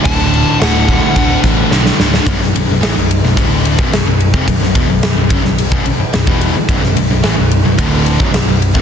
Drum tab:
CC |x-x-x-x-x-x-----|----------------|----------------|----------------|
RD |----------------|x-x-x-x-x-x-x-x-|x-x-x-x-x-x-x-x-|x-x-x-x-x-x-x-x-|
SD |----o-----o-oooo|-o--o--o----o---|-o--o--o----o---|-o--o-------o---|
BD |o-----o-o-o-----|o-------o--o---o|o-o---o--o---o--|o-------o--o---o|